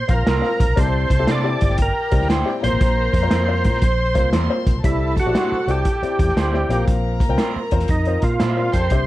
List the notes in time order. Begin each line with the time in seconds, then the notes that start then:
Already playing: C5 C6
0.08 A#1 C4 F4 A#4 F5, kick, closed hi-hat
0.27 C2 A#3 F4 A#4 C5 A#5, snare, closed hi-hat
0.42 C4 F4 A#4 F5, snare
0.60 A#1, kick, closed hi-hat
0.68 B1
0.76 C2 C3 C4 E4 G4 A4 C5 D5 A5, kick, closed hi-hat
1.10 C2, kick, closed hi-hat
1.19 C4 E4 G4 A4
1.27 C3 G3 D4 E4 C5 D5, snare, closed hi-hat
1.44 C4 E4 G4 D5
1.61 G1 G4 G5, kick, closed hi-hat
1.69 snare
1.78 kick, closed hi-hat
1.82 A#4
2.11 C2 C4 E4 G4 D5, kick, closed hi-hat
2.21 D2, snare
2.30 G3 D4 E4 C5, snare, closed hi-hat
2.45 C4 E4 G4 D5, snare
2.62 A#1 A#2 A#3 C4 F4 A#4 C5 A#5, closed hi-hat
2.73 A1
2.81 A#1, kick, closed hi-hat
3.13 F2, kick, closed hi-hat
3.23 A#3 C4 F4 C5
3.31 F2 A#3 C4 F4 C5, snare, closed hi-hat
3.48 A#3 C4 F4 C5
3.64 A#2, kick, closed hi-hat
3.74 snare
3.82 A#1 C5 C6, kick, closed hi-hat
4.15 C2 A#3 C4 F4 C5, kick, closed hi-hat
4.33 E2 A#3 C4 F4 C5, snare, closed hi-hat
4.50 A#3 C4 F4 C5
4.67 A#1, kick, closed hi-hat
4.76 B1
4.83 C2 C3 C4 E4 G4 A4 D5 A5, kick, closed hi-hat
5.17 F#4, kick, closed hi-hat
5.26 A#1 C4 E4 G4 D5
5.35 G3 D4 E4 C5, snare, closed hi-hat
5.52 muted fingered electric bass stroke
5.67 C2 C4 E4 G4 D5, closed hi-hat
5.85 kick, closed hi-hat
6.02 C4 E4 G4 D5, muted fingered electric bass stroke, closed hi-hat
6.19 E2, kick, closed hi-hat
6.29 snare
6.36 D2 G3 D4 E4 C5, snare, closed hi-hat
6.54 C4 E4 G4 D5, snare
6.69 A#1 A#2 C4 F4 A#4 F5 A#5, closed hi-hat
6.88 A#1, kick, closed hi-hat
7.20 kick, closed hi-hat
7.29 C2 C4 F4 A#4 G5
7.38 A#3 C4 F4 C5, snare, closed hi-hat
7.56 muted fingered electric bass stroke
7.71 E2 C4 F4 A#4 C5, kick, closed hi-hat
7.80 snare, closed hi-hat
7.88 F2 D#4, kick, closed hi-hat
8.05 C4 F4 A#4 C5, closed hi-hat
8.22 A#2 F4, kick, closed hi-hat
8.40 A#2 A#3 C4 D4 F4 C5 D5, snare, closed hi-hat
8.50 E4 E5
8.57 C4 F4 A#4 D5 F5
8.72 F2 G4 A4 C5 G5 A5, kick, closed hi-hat
8.85 A#4 A#5
8.90 C2 C3 D4 G4 C5 E5 C6, kick, closed hi-hat